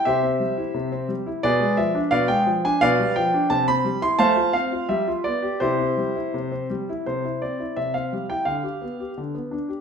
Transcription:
X:1
M:2/4
L:1/16
Q:1/4=86
K:C
V:1 name="Grand piano"
[Gce]6 z2 | [^GBd]2 e2 [Bdf] =g2 ^g | [Bdf]2 g2 a b2 c' | [cfa]2 f2 e2 d2 |
[EGc]6 z2 | c2 d2 e f2 g | f6 z2 |]
V:2 name="Grand piano"
C, C G, E C, C G, E | B,, ^G, F, D B,, G, F, D | B,, G, F, D C, C G, E | A, F C F G, F B, G |
C, C G, E C, C G, E | C, E C E C, C G, E | D, G B, G D, B, D G |]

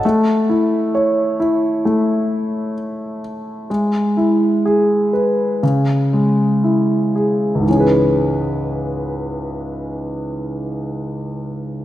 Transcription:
X:1
M:4/4
L:1/8
Q:1/4=60
K:C#m
V:1 name="Grand piano"
A, E c E A,4 | G, E G B C, G, E G | [C,,G,,E,CGB]8 |]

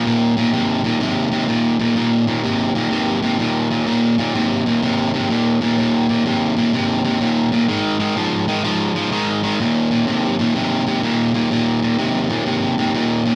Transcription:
X:1
M:4/4
L:1/8
Q:"Swing" 1/4=126
K:Ab
V:1 name="Overdriven electric guitar" clef=bass
[E,,B,,] [E,,B,,] [E,,C,] [E,,B,,] [E,,C,] [E,,C,] [E,,B,,] [E,,B,,] | [E,,B,,] [E,,B,,] [E,,C,] [E,,B,,] [E,,C,] [E,,C,] [E,,B,,] [E,,B,,] | [E,,B,,] [E,,B,,] [E,,C,] [E,,B,,] [E,,C,] [E,,C,] [E,,B,,] [E,,B,,] | [E,,B,,] [E,,B,,] [E,,C,] [E,,B,,] [E,,C,] [E,,C,] [E,,B,,] [E,,B,,] |
[A,,E,] [A,,E,] [A,,F,] [A,,E,] [A,,F,] [A,,F,] [A,,E,] [A,,E,] | [E,,B,,] [E,,B,,] [E,,C,] [E,,B,,] [E,,C,] [E,,C,] [E,,B,,] [E,,B,,] | [E,,B,,] [E,,B,,] [E,,C,] [E,,B,,] [E,,C,] [E,,C,] [E,,B,,] [E,,B,,] |]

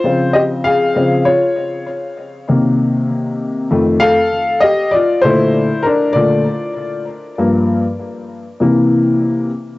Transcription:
X:1
M:4/4
L:1/8
Q:"Swing 16ths" 1/4=98
K:Dblyd
V:1 name="Upright piano"
[Fc] [Ge] [Af]2 [Fd]2 z2 | z4 z [=Af]2 [Ge] | [F=d] [=Ec]2 [=DB] [Fd]3 z | z8 |]
V:2 name="Upright piano" clef=bass
[D,F,C]3 [D,F,C] z4 | [C,E,B,]4 [F,,E,=A,] z3 | z [B,,=D,=A,] z2 [B,,D,A,] z3 | [G,,F,B,] z3 [C,=E,B,]3 z |]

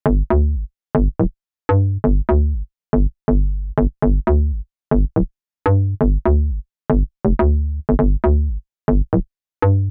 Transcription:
X:1
M:4/4
L:1/16
Q:"Swing 16ths" 1/4=121
K:Dm
V:1 name="FM bass" clef=bass
G,,, z D,,2 G,,, z2 G,,, z D,,, z3 G,,2 z | G,,, z D,,2 G,,, z2 G,,, z2 G,,,3 z G,,, z | G,,, z D,,2 G,,, z2 G,,, z D,,, z3 G,,2 z | G,,, z D,,2 G,,, z2 G,,, z2 F,,, D,,3 z G,,, |
G,,, z D,,2 G,,, z2 G,,, z D,,, z3 G,,2 z |]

